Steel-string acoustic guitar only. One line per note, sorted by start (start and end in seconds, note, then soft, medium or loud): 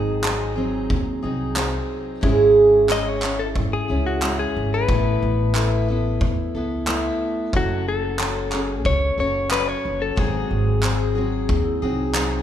0.00 0.23 G#2 medium
0.00 0.24 D#3 medium
0.00 0.22 F#3 medium
0.00 0.22 C4 medium
0.00 0.23 D#4 medium
0.00 0.25 G#4 medium
0.23 0.57 F#3 medium
0.23 0.56 C4 medium
0.23 0.55 D#4 medium
0.23 0.54 G#4 medium
0.56 1.24 F#3 soft
0.56 1.23 C4 soft
0.56 1.22 D#4 soft
0.56 1.22 G#4 medium
1.23 1.54 F#3 soft
1.23 1.55 C4 soft
1.23 1.56 D#4 soft
1.23 1.56 G#4 medium
1.55 2.22 F#3 medium
1.55 2.22 C4 medium
1.55 2.22 D#4 medium
1.55 2.23 G#4 medium
2.21 2.88 G#2 medium
2.21 2.89 C#3 medium
2.21 2.86 G#3 medium
2.21 2.88 C#4 medium
2.21 2.89 E4 medium
2.21 2.89 G#4 medium
2.87 3.21 G#3 medium
2.87 3.22 C#4 medium
2.87 3.22 E4 medium
2.87 3.23 G#4 medium
3.24 3.89 C#4 soft
3.24 3.89 E4 soft
3.88 4.20 G#3 soft
3.88 4.21 C#4 soft
3.88 4.22 E4 soft
3.88 4.21 G#4 soft
4.21 4.88 G#3 medium
4.21 4.88 C#4 medium
4.21 4.89 E4 medium
4.21 4.89 G#4 medium
4.88 5.54 A3 medium
4.88 5.55 B3 medium
4.88 5.55 E4 medium
4.88 5.57 A4 medium
5.55 5.87 A3 medium
5.55 5.88 B3 medium
5.55 5.88 E4 medium
5.55 5.87 A4 medium
5.88 6.56 B3 soft
5.88 6.55 E4 medium
5.88 6.54 A4 soft
6.55 6.87 B3 soft
6.55 6.88 E4 soft
6.55 6.87 A4 medium
6.87 7.54 A3 medium
6.87 7.53 B3 medium
6.87 7.54 E4 medium
6.87 7.56 A4 medium
7.54 8.18 F#3 medium
7.54 8.18 C#4 medium
7.54 8.20 F#4 medium
7.54 8.21 A4 medium
8.18 8.52 F#3 medium
8.18 8.52 C#4 medium
8.18 8.52 F#4 medium
8.18 8.50 A4 medium
8.52 9.19 C#4 soft
8.52 9.18 F#4 soft
8.52 9.16 A4 soft
9.18 9.51 C#4 soft
9.18 9.52 F#4 soft
9.18 9.51 A4 medium
9.51 10.16 F#3 medium
9.51 10.17 C#4 soft
9.51 10.18 F#4 medium
9.51 10.17 A4 medium
10.16 10.83 G#2 medium
10.16 10.83 D#3 medium
10.16 10.81 F#3 medium
10.16 10.83 C4 medium
10.16 10.84 F#4 medium
10.16 10.85 G#4 medium
10.83 11.16 F#3 medium
10.83 11.16 C4 medium
10.83 11.15 F#4 medium
10.83 11.14 G#4 medium
11.15 11.83 F#3 soft
11.15 11.82 C4 soft
11.15 11.82 F#4 soft
11.15 11.82 G#4 medium
11.82 12.13 F#3 soft
11.82 12.14 C4 soft
11.82 12.15 F#4 soft
11.82 12.15 G#4 medium
12.14 12.42 F#3 medium
12.14 12.42 C4 medium
12.14 12.42 F#4 medium
12.14 12.42 G#4 medium